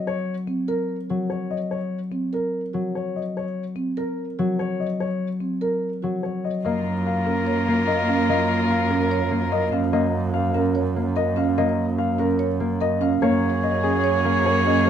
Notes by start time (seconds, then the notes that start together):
Already playing: F#3 D#5
0.07 C#5
0.47 C4
0.68 A#4
1.10 F#3 F#4
1.30 C#5
1.51 D#5
1.71 C#5
2.12 C4
2.33 A#4
2.73 F#3 F#4
2.95 C#5
3.16 D#5
3.37 C#5
3.76 C4
3.97 A#4
4.39 F#3 F#4
4.59 C#5
4.80 D#5
5.00 C#5
5.40 C4
5.61 A#4
6.02 F#3 F#4
6.23 C#5
6.45 D#5
6.64 F#2 A#3 F4 A#4 D#5
7.07 F5
7.25 C#4 A#4
7.47 C#5
7.68 A#3
7.87 A#4 D#5
8.08 C#4 F5
8.29 A#3 D#5
8.71 F5
8.91 C#4 A#4
9.11 C#5
9.31 A#3
9.52 A#4 D#5
9.72 C#4 F5
9.93 A#3 D#5
10.34 F5
10.54 C#4 A#4
10.75 C#5
10.96 A#3
11.16 A#4 D#5
11.36 C#4 F5
11.58 A#3 D#5
11.98 F5
12.18 C#4 A#4
12.39 C#5
12.60 A#3
12.81 A#4 D#5
13.01 C#4 F5
13.22 F#2 A#3 G#4 C#5
13.63 D#5
13.83 C#4 G#4
14.04 C#5
14.25 A#3
14.45 A#4 C#5
14.65 C#4 D#5
14.86 C#5